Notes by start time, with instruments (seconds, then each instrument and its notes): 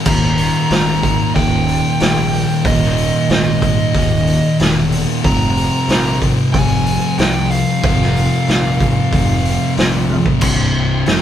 0.05 picked electric bass D#1, distorted electric guitar D#2 A#2 D#3, tonewheel organ D#3 A#3 F4, lead electric guitar A#5, kick, crash
0.23 snare
0.38 open hi-hat
0.70 picked electric bass G#1, snare, open hi-hat
1.03 kick, open hi-hat
1.35 picked electric bass D#1, distorted electric guitar D#2 A#2 D#3, lead electric guitar G5, kick, open hi-hat
1.68 open hi-hat
2.00 picked electric bass A#1, snare, open hi-hat
2.32 open hi-hat
2.65 picked electric bass D#1, distorted electric guitar D#2 A#2 D#3, lead electric guitar D#5, kick, open hi-hat
2.83 snare
2.98 open hi-hat
3.29 picked electric bass G#1, lead electric guitar D#5, snare, open hi-hat
3.62 kick, open hi-hat
3.94 picked electric bass D#1, distorted electric guitar D#2 A#2 D#3, kick, open hi-hat
4.27 open hi-hat
4.60 picked electric bass E1, snare, open hi-hat
4.92 open hi-hat
5.23 picked electric bass F1, distorted electric guitar F2 C3 F3, tonewheel organ F3 G3 C4, lead electric guitar A#5, kick, open hi-hat
5.57 open hi-hat
5.89 picked electric bass A#1, snare, open hi-hat
6.22 kick, open hi-hat
6.53 picked electric bass F1, distorted electric guitar F2 C3 F3, lead electric guitar G#5, kick, open hi-hat
6.86 open hi-hat
7.18 picked electric bass C2, lead electric guitar G5, snare, open hi-hat
7.51 lead electric guitar F5, open hi-hat
7.83 picked electric bass F1, distorted electric guitar F2 C3 F3, tonewheel organ A#3, kick, open hi-hat
8.02 snare
8.16 open hi-hat
8.48 picked electric bass A#1, snare, open hi-hat
8.80 kick, open hi-hat
9.11 picked electric bass F1, distorted electric guitar F2 C3 F3, kick, open hi-hat
9.45 open hi-hat
9.77 picked electric bass A#1, snare, open hi-hat
10.10 high tom
10.26 kick
10.41 picked electric bass C1, distorted electric guitar C2 G2 C3, tonewheel organ C4 G4 C5, kick, crash
11.06 picked electric bass F1, distorted electric guitar F2 C3 F3, tonewheel organ F3 G4, snare, open hi-hat